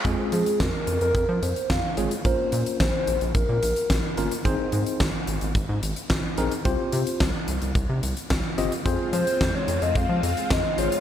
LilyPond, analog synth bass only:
\new Staff \with { instrumentName = "Analog synth bass" } { \clef bass \time 4/4 \key f \minor \tempo 4 = 109 f,16 r16 f16 r16 f,16 r16 f,16 f,16 f,16 f16 f,16 r16 f,16 r16 aes,,16 r16 | bes,,16 r16 bes,16 r16 bes,,16 r16 bes,,16 bes,,16 bes,,16 bes,16 bes,,16 r16 bes,,16 r16 g,,16 r16 | aes,,16 r16 aes,16 r16 aes,,16 r16 aes,,16 aes,,16 aes,,16 aes,16 aes,,16 r16 aes,,16 r16 bes,,16 r16 | c,16 r16 c16 r16 c,16 r16 c,16 c,16 c,16 c16 c,16 r16 c,16 r16 g,,16 r16 |
f,16 r16 f16 r16 f,16 r16 f,16 f,16 f,16 f16 f,16 r16 f,16 r16 aes,,16 r16 | }